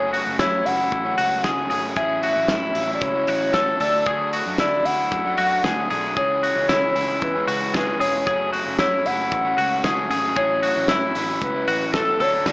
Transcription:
Already playing: F#1 F#2 C#3 F#3 A3 C#4 G#4 C#5
0.13 F#4, open hi-hat
0.26 F#1 F#3 A3 C#4
0.39 F#2 E4 C#5, kick, snare, closed hi-hat
0.65 F#1 C#3 F#3 A3 C#4 F#5, open hi-hat
0.92 A1, kick, closed hi-hat
1.05 F#3 A3 C#4
1.18 C#2 F#4, open hi-hat
1.44 C#2 C#3 F#3 A3 C#4 G#4, kick, snare, closed hi-hat
1.70 G#1 C#3 F#3 A3 C#4 G#4, open hi-hat
1.96 A1 A2 F#3 C#4 E4 G#4 E5, kick, closed hi-hat
2.23 F#4, open hi-hat
2.36 A1 F#3 C#4 E4
2.48 A2 E4, kick, snare, closed hi-hat
2.75 A1 A2 F#3 C#4 E4, open hi-hat
2.95 D5
3.01 C#2 C#5, kick, closed hi-hat
3.14 F#3 C#4 E4
3.27 A1 F#4, open hi-hat
3.54 A2 F#3 C#4 E4 A4, kick, snare, closed hi-hat
3.80 D2 D3 F#3 A3 D4 A4 D5, open hi-hat
4.06 D2 D3 F#3 A3 D4 G#4, kick, closed hi-hat
4.33 F#4, open hi-hat
4.46 F#2 F#3 A3 D4
4.58 D3 E4 D5, kick, snare, closed hi-hat
4.84 D2 D3 F#3 A3 D4 F#5, open hi-hat
5.12 F#2, kick, closed hi-hat
5.24 F#3 A3 D4
5.37 F#2 F#4, open hi-hat
5.63 D2 D3 F#3 A3 D4 G#4, kick, snare, closed hi-hat
5.89 B1 D3 F#3 A3 D4 G#4, open hi-hat
6.16 C#2 C#3 E3 G#3 C#4 G#4 C#5, kick, closed hi-hat
6.43 F#4, open hi-hat
6.56 C#2 E3 G#3 C#4
6.69 C#3 E4, kick, snare, closed hi-hat
6.95 C#2 C#3 E3 G#3 C#4, open hi-hat
7.22 E2 B4, kick, closed hi-hat
7.35 E3 G#3 C#4
7.48 C#2 F#4, open hi-hat
7.74 C#3 E3 G#3 C#4 G#4, kick, snare, closed hi-hat
8.00 E1 C#3 E3 G#3 C#4 G#4 C#5, open hi-hat
8.27 F#1 F#2 C#3 F#3 A3 C#4 G#4, kick, closed hi-hat
8.53 F#4, open hi-hat
8.66 F#1 F#3 A3 C#4
8.79 F#2 E4 C#5, kick, snare, closed hi-hat
9.05 F#1 C#3 F#3 A3 C#4 F#5, open hi-hat
9.32 A1, kick, closed hi-hat
9.45 F#3 A3 C#4
9.58 C#2 F#4, open hi-hat
9.84 C#2 C#3 F#3 A3 C#4 G#4, kick, snare, closed hi-hat
10.10 G#1 C#3 F#3 A3 C#4 G#4, open hi-hat
10.36 A1 A2 F#3 C#4 E4 G#4 C#5, kick, closed hi-hat
10.63 F#4, open hi-hat
10.76 A1 F#3 C#4 E4
10.88 A2 E4, kick, snare, closed hi-hat
11.15 A1 A2 F#3 C#4 E4, open hi-hat
11.42 C#2 B4, kick, closed hi-hat
11.54 F#3 C#4 E4
11.68 A1 F#4, open hi-hat
11.94 A2 F#3 C#4 E4 A4, kick, snare, closed hi-hat
12.20 D2 D3 F#3 A3 D4 A4 C#5, open hi-hat
12.46 D2 D3 F#3 A3 D4 D5, kick, snare, crash

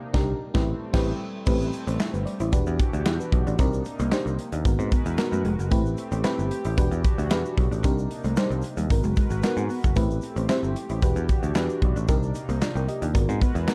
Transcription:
Already playing: C3 A#3 D4 D#4
0.13 C2 D4 D#4 G4 A#4, kick, snare
0.41 G3 A3 C4
0.54 A1 C4 E4 G4 B4, kick, snare
0.93 A1 C4 E4 G4 B4 G5, kick, snare, crash
1.46 A1 G3 A3 C4 E4 G4 B4, kick, crash, shaker
1.61 shaker
1.72 muted clean electric guitar stroke, closed hi-hat, shaker
1.87 A1 C4, closed hi-hat, shaker
2.00 E4, snare, clap, shaker
2.13 G1 D4 B4, closed hi-hat, shaker
2.26 D5, muted clean electric guitar stroke, closed hi-hat
2.40 A1 E4 C5, closed hi-hat, shaker
2.52 E1 E3 D4 F#4 G4 B4, kick, closed hi-hat, shaker
2.67 E2, shaker
2.79 muted clean electric guitar stroke, kick, closed hi-hat, shaker
2.93 D2 D4, closed hi-hat, shaker
3.06 E2 B3 E4 G4, snare, clap, shaker
3.20 D4 B4, shaker
3.32 B1, muted clean electric guitar stroke, kick, closed hi-hat
3.47 A1 D4 F#4 D5, closed hi-hat, shaker
3.59 C2 C3 A#3 C4 D4 D#4 G4 A#4, kick, closed hi-hat, shaker
3.73 closed hi-hat, shaker
3.85 muted clean electric guitar stroke, closed hi-hat, shaker
3.99 C2 A#3, closed hi-hat, shaker
4.12 D4 D#4 G4 C5, snare, clap, shaker
4.26 C2, shaker
4.39 muted clean electric guitar stroke, closed hi-hat
4.52 D#2 D4, closed hi-hat, shaker
4.65 G#1 G#3 B3 D#4 F#4 A#4 B4, muted clean electric guitar stroke, kick, closed hi-hat, shaker
4.79 G#2 C4, shaker
4.92 B3, kick, closed hi-hat, shaker
5.06 E2, closed hi-hat, shaker
5.18 B3 D#4 F#4 A#4, snare, clap, shaker
5.32 F#2 A3, shaker
5.45 F1 G#3, closed hi-hat
5.59 F#1, closed hi-hat, shaker
5.70 A1 A3 C4 E4 G4 B4, kick, closed hi-hat, shaker
5.86 shaker
5.97 muted clean electric guitar stroke, closed hi-hat, shaker
6.12 A1 C4, closed hi-hat, shaker
6.24 C4 E4 G4 B4, snare, clap, shaker
6.39 G1, shaker
6.51 muted clean electric guitar stroke, closed hi-hat
6.65 A1 E4, closed hi-hat, shaker
6.77 E1 E3 D4 F#4 G4 B4, kick, closed hi-hat, shaker
6.91 E2, shaker
7.04 muted clean electric guitar stroke, kick, closed hi-hat, shaker
7.18 D2 D4, closed hi-hat, shaker
7.30 E2 D4 E4 F#4 G4 B4, snare, clap, shaker
7.45 shaker
7.57 B1, muted clean electric guitar stroke, kick, closed hi-hat
7.71 A1 D4, closed hi-hat, shaker
7.84 C2 C3 A#3 C4 D4 D#4 G4 A#4, kick, closed hi-hat, shaker
7.98 shaker
8.11 muted clean electric guitar stroke, closed hi-hat
8.24 C2 A3, closed hi-hat, shaker
8.37 G3 D4 D#4 G4 C5, snare, clap, shaker
8.50 C2, closed hi-hat, shaker
8.62 muted clean electric guitar stroke, closed hi-hat, shaker
8.77 D#2 G3, closed hi-hat, shaker
8.90 G#1 G#3 B3 D#4 F#4 A#4 B4, muted clean electric guitar stroke, kick, closed hi-hat, shaker
9.03 F#1 G#3, closed hi-hat, shaker
9.16 G#3, kick, closed hi-hat, shaker
9.30 G#1, closed hi-hat, shaker
9.42 B3 D#4 F#4 A#4 F#5, muted clean electric guitar stroke, snare, clap, shaker
9.57 G#2 C4, shaker
9.69 B3, open hi-hat, shaker
9.84 F#1, kick, closed hi-hat, shaker
9.96 A1 A3 C4 E4 G4 B4, kick, closed hi-hat, shaker
10.11 closed hi-hat, shaker
10.21 muted clean electric guitar stroke, closed hi-hat, shaker
10.36 A1 C4, closed hi-hat, shaker
10.49 C4 E4 G4 C5, snare, clap, shaker
10.63 G1, shaker
10.76 muted clean electric guitar stroke, closed hi-hat
10.90 A1 E4, closed hi-hat, shaker
11.02 E1 E3 D4 F#4 G4 B4, kick, closed hi-hat, shaker
11.16 E2, shaker
11.29 muted clean electric guitar stroke, kick, closed hi-hat, shaker
11.43 D2 D4, closed hi-hat, shaker
11.55 E2 D4 E4 F#4 G4 B4, snare, clap, shaker
11.69 closed hi-hat, shaker
11.82 B1, muted clean electric guitar stroke, kick, closed hi-hat
11.96 A1 D4, closed hi-hat, shaker
12.08 C2 C3 A#3 C4 D4 D#4 G4 A#4, kick, closed hi-hat, shaker
12.23 shaker
12.34 muted clean electric guitar stroke, closed hi-hat, shaker
12.49 C2 A#3, closed hi-hat, shaker
12.62 D4 F4 D5, snare, clap, shaker
12.75 C2 A#4 G5, closed hi-hat, shaker
12.88 G4 D#5, muted clean electric guitar stroke, closed hi-hat
13.02 D#2 D4 F4 D5, closed hi-hat, shaker
13.14 G#1 G#3 B3 D#4 F#4 A#4 B4, muted clean electric guitar stroke, kick, closed hi-hat, shaker
13.29 G#2 C4, shaker
13.41 B3, kick, closed hi-hat, shaker
13.55 E2, closed hi-hat, shaker
13.67 B3 D#4 F#4 A#4, snare, clap, shaker

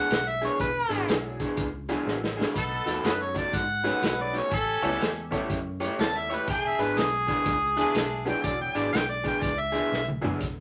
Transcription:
Already playing: E3 B3 D4 G#4 F#5
0.11 B1, snare, closed hi-hat
0.28 E5
0.41 E3 B3 D4 G#4 C#5, snare, closed hi-hat
0.60 E1 B4, kick, snare, closed hi-hat
0.89 G#1 E3 B3 D4 G#4, snare, closed hi-hat
1.07 B1 F#3 B3 D4 E4 G#4, snare, closed hi-hat
1.40 E3 B3 D4 G#4, kick, snare, closed hi-hat
1.57 C#2, kick, snare, closed hi-hat
1.89 E3 F#3 B3 D4 E4 G#4, snare, closed hi-hat
2.06 A1, snare
2.24 snare
2.37 E3 B3 D4 G#4
2.41 snare
2.53 B1 B3 D#4 A4, kick, closed hi-hat
2.58 snare
2.86 D#2 B2 A3 D#4 F#4, snare, closed hi-hat
3.04 F#2 F#3 B3 C#4 D#4 F#4 G#4 A4 B4, snare, closed hi-hat
3.22 C#5
3.34 B2 A3 D#4 F#4 D5, kick, snare, closed hi-hat
3.53 G#2 F#5, kick, snare, closed hi-hat
3.83 B2 F#3 A3 B3 C#4 D#4 F#4 G#4 B4, closed hi-hat
3.87 snare
4.02 B1, snare, closed hi-hat
4.21 D5
4.33 B2 A3 D#4 F#4, snare, closed hi-hat
4.37 C#5
4.49 A1 C#4 G4 A4, kick, closed hi-hat
4.53 A4, snare
4.82 C#2 G3 A3 B3 C#4 E4 G4 A4 C#5, snare, closed hi-hat
5.01 E2, snare, closed hi-hat
5.31 G3 A3 B3 C#4 E4 G4 A4 C#5, kick, snare, closed hi-hat
5.50 F#2, kick, snare, closed hi-hat
5.80 A3 E4 G4 C#5, snare, closed hi-hat
5.99 D#2 G3 B3 C#4 E4 A4 A5, snare, closed hi-hat
6.17 E5
6.30 A3 E4 G4 C#5, snare, closed hi-hat
6.35 B4
6.46 E1 D4 E4 G#4, kick, snare, closed hi-hat
6.50 G5
6.68 E5
6.79 G#1 E3 B3 D4 G#4 B4, snare, closed hi-hat
6.96 B1 G#4, snare, closed hi-hat
7.27 E3 B3 D4 G#4, kick, snare, closed hi-hat
7.46 C#2, kick, snare, closed hi-hat
7.76 E3 B3 D4 E4 G#4, snare, closed hi-hat
7.95 B1, snare, closed hi-hat
8.25 E3 F#3 B3 D4 E4 G#4, snare, closed hi-hat
8.30 G5
8.44 E1 D5, kick, snare, closed hi-hat
8.61 G5
8.75 G#1 E3 B3 D4 G#4 D5, snare, closed hi-hat
8.92 B1 G5, snare, closed hi-hat
9.09 D5
9.24 E3 B3 D4 G#4 G5, kick, snare, closed hi-hat
9.42 C#2 D5, kick, snare, closed hi-hat
9.59 E5
9.72 E3 B3 D4 G#4, snare, closed hi-hat
9.92 B1, snare
10.08 mid tom
10.21 E3 F#3 B3 D4 E4 G#4, floor tom
10.41 E1, kick, snare, closed hi-hat

